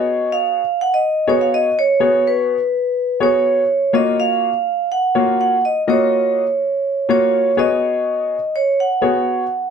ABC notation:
X:1
M:4/4
L:1/16
Q:1/4=124
K:C#mix
V:1 name="Vibraphone"
d2 e4 f d3 c e d2 c2- | c2 B8 c6 | d2 e6 f4 f2 d2 | c8- c2 c4 d2- |
d6 c2 f8 |]
V:2 name="Upright piano"
[B,FGc]4 z6 [B,FGc]4 z2 | [B,FGc]4 z6 [B,FGc]4 z2 | [A,EFc]4 z6 [A,EFc]4 z2 | [A,EFd]4 z6 [A,EFc]4 [B,FGc]2- |
[B,FGc]4 z6 [B,FGc]4 z2 |]